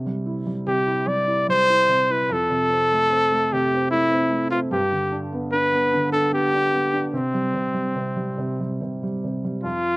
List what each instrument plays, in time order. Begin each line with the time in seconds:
Already playing: felt piano C3
0.06 felt piano G3
0.26 felt piano E4
0.47 felt piano G3
0.67 felt piano C3, trumpet G4
0.87 felt piano E4
1.07 felt piano G3, trumpet D5
1.27 felt piano E4
1.48 felt piano G3, trumpet C5
1.70 felt piano E4
1.88 felt piano C3
2.10 felt piano E4, trumpet B4
2.29 felt piano F2, trumpet A4
2.50 felt piano C3
2.70 felt piano C4
2.92 felt piano A3
3.10 felt piano C4
3.32 felt piano A3
3.53 felt piano C3, trumpet G4
3.74 felt piano C4
3.91 felt piano A3, trumpet E4
4.11 felt piano C4
4.31 felt piano A3
4.51 felt piano C4, trumpet F4
4.71 felt piano G2, trumpet G4
4.92 felt piano D3
5.12 felt piano D4
5.32 felt piano B3
5.52 felt piano D4, trumpet B4
5.73 felt piano B3
5.93 felt piano D3
6.13 felt piano D4, trumpet A4
6.32 felt piano B3, trumpet G4
6.54 felt piano D4
6.72 felt piano B3
6.93 felt piano D4
7.13 felt piano C3, trumpet C4
7.34 felt piano G3
7.54 felt piano C3
7.74 felt piano G3
7.95 felt piano C3
8.16 felt piano G3
8.38 felt piano C3
8.60 felt piano G3
8.81 felt piano C3
9.03 felt piano G3
9.24 felt piano C3
9.44 felt piano G3
9.64 felt piano F2, trumpet F4